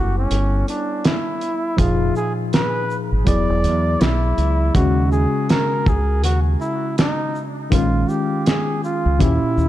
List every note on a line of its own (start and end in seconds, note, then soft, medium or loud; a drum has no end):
0.00 0.25 F#1 medium
0.00 1.75 G3 medium
0.00 1.75 B3 medium
0.00 1.76 E4 medium
0.00 0.17 F#4 medium
0.00 1.76 A4 medium
0.18 0.65 C#4 medium
0.31 0.62 G1 loud
0.31 closed hi-hat medium
0.68 1.07 D4 medium
0.68 closed hi-hat medium
0.68 shaker medium
1.04 1.80 E4 loud
1.04 snare loud
1.04 closed hi-hat medium
1.41 closed hi-hat soft
1.41 shaker soft
1.77 2.10 F1 loud
1.77 3.24 A#2 medium
1.77 3.23 F3 medium
1.77 3.24 D#4 medium
1.77 2.16 F4 loud
1.77 3.25 G#4 medium
1.77 kick loud
1.77 closed hi-hat medium
2.16 2.33 G#4 medium
2.16 shaker medium
2.53 2.99 B4 loud
2.53 snare medium
2.53 closed hi-hat medium
2.90 shaker medium
3.12 3.25 G#1 medium
3.25 3.46 E1 loud
3.25 4.71 F#3 medium
3.25 4.72 B3 medium
3.25 4.72 E4 medium
3.25 4.73 G#4 medium
3.25 4.03 D5 loud
3.25 kick medium
3.25 closed hi-hat medium
3.49 3.66 E1 loud
3.64 3.95 E2 loud
3.64 closed hi-hat medium
3.64 shaker medium
4.01 4.32 B1 medium
4.01 4.74 E4 loud
4.01 snare loud
4.01 closed hi-hat medium
4.38 4.69 C#2 medium
4.38 closed hi-hat soft
4.38 shaker soft
4.74 5.25 D#2 loud
4.74 7.67 C#3 medium
4.74 7.67 G#3 medium
4.74 7.68 C#4 medium
4.74 5.10 F#4 medium
4.74 7.69 F#4 medium
4.74 kick loud
4.74 closed hi-hat medium
5.12 5.52 G#4 medium
5.12 shaker medium
5.49 5.90 A#4 loud
5.49 snare loud
5.49 closed hi-hat medium
5.86 6.24 C#2 medium
5.86 6.24 G#4 medium
5.86 kick medium
5.86 shaker medium
6.24 6.55 D#2 loud
6.24 6.40 F#4 medium
6.24 closed hi-hat medium
6.61 6.95 E4 medium
6.61 shaker medium
6.98 7.44 D#4 loud
6.98 snare loud
6.98 closed hi-hat medium
7.35 shaker soft
7.70 8.03 A#1 loud
7.70 9.16 D#3 medium
7.70 9.17 G#3 medium
7.70 9.17 C#4 medium
7.70 8.11 F4 loud
7.70 9.18 F4 medium
7.70 kick loud
7.70 closed hi-hat medium
8.09 8.48 G4 medium
8.09 shaker medium
8.46 8.83 G#4 medium
8.46 snare loud
8.46 closed hi-hat medium
8.84 9.23 F4 medium
8.84 shaker medium
9.06 9.18 C#2 medium
9.18 9.39 D#2 loud
9.18 9.69 A#2 medium
9.18 9.69 C#4 medium
9.18 9.69 E4 medium
9.18 9.69 E4 loud
9.18 9.69 G4 medium
9.18 kick medium
9.18 closed hi-hat medium
9.43 muted fingered electric bass stroke soft
9.58 9.69 D#2 medium
9.58 shaker medium